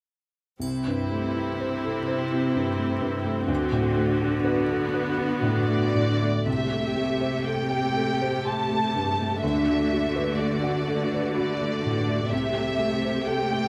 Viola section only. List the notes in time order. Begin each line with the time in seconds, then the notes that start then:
0.61 C4 E4
3.49 F#4
4.46 B3
6.47 A3 G4
9.43 F#4
12.32 A3 G4